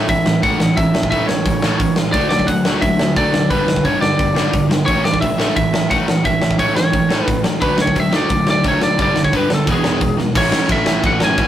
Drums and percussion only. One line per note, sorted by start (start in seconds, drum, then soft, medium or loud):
0.08 kick loud
0.08 open hi-hat medium
0.26 snare loud
0.43 kick loud
0.43 open hi-hat medium
0.60 snare loud
0.78 kick loud
0.78 open hi-hat medium
0.95 snare loud
1.03 kick medium
1.12 kick medium
1.12 open hi-hat medium
1.29 snare loud
1.45 kick loud
1.45 open hi-hat medium
1.62 snare loud
1.80 kick loud
1.80 open hi-hat medium
1.96 snare loud
2.14 kick loud
2.14 open hi-hat medium
2.31 snare loud
2.39 kick medium
2.48 kick medium
2.48 open hi-hat medium
2.65 snare loud
2.82 kick loud
2.82 open hi-hat medium
2.99 snare loud
3.16 kick loud
3.16 open hi-hat medium
3.34 snare loud
3.51 kick loud
3.51 open hi-hat medium
3.68 snare loud
3.76 kick medium
3.85 kick medium
3.85 open hi-hat medium
4.02 snare loud
4.19 kick loud
4.19 open hi-hat medium
4.36 snare loud
4.53 kick loud
4.53 open hi-hat medium
4.71 snare loud
4.88 kick loud
4.88 open hi-hat medium
5.05 snare loud
5.14 kick medium
5.22 kick loud
5.22 open hi-hat medium
5.40 snare loud
5.57 kick loud
5.57 open hi-hat medium
5.74 snare loud
5.91 kick loud
5.91 open hi-hat medium
6.08 snare loud
6.25 kick loud
6.25 open hi-hat medium
6.42 snare loud
6.51 kick medium
6.59 kick medium
6.59 open hi-hat medium
6.76 snare loud
6.93 kick loud
6.93 open hi-hat medium
7.10 snare loud
7.28 kick loud
7.28 open hi-hat medium
7.44 snare loud
7.61 kick loud
7.61 open hi-hat medium
7.78 snare loud
7.87 kick medium
7.96 kick loud
7.96 open hi-hat medium
8.13 snare loud
8.29 kick loud
8.29 open hi-hat medium
8.47 snare loud
8.64 kick loud
8.64 open hi-hat medium
8.81 snare loud
8.99 kick loud
8.99 open hi-hat medium
9.16 snare loud
9.24 kick medium
9.33 kick loud
9.33 open hi-hat medium
9.50 snare loud
9.67 kick loud
9.67 open hi-hat medium
9.84 snare loud
10.01 kick loud
10.01 open hi-hat medium
10.18 snare medium
10.35 kick loud
10.35 crash loud
10.35 crash medium
10.52 snare loud
10.69 kick loud
10.69 crash medium
10.86 snare loud
11.03 kick loud
11.03 crash medium
11.20 snare loud
11.38 kick loud
11.38 crash medium